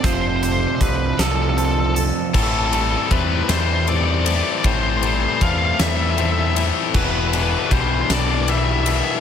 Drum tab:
CC |------|x-----|------|x-----|
RD |------|-xxxxx|xxxxxx|-xxxxx|
HH |xxxxxx|------|------|------|
SD |---o--|---o--|---o--|---o--|
BD |o-o---|o-o---|o-o---|o-o---|